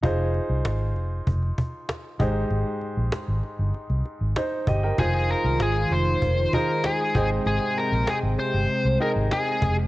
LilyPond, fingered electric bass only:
\new Staff \with { instrumentName = "Fingered electric bass" } { \clef bass \time 4/4 \key f \minor \tempo 4 = 97 f,,8. c,16 aes,,8 f,,8 f,,8 r4 aes,,8 | aes,,16 r8 bes,,16 r16 aes,,16 r16 g,,16 r16 c,16 r16 aes,,16 r8 g,,8 | f,,8. c,16 aes,,8 f,,8 f,,8 r4 aes,,8 | aes,,16 r8 bes,,16 r16 aes,,16 r16 g,,16 r16 c,16 r16 aes,,16 r8 f,,8 | }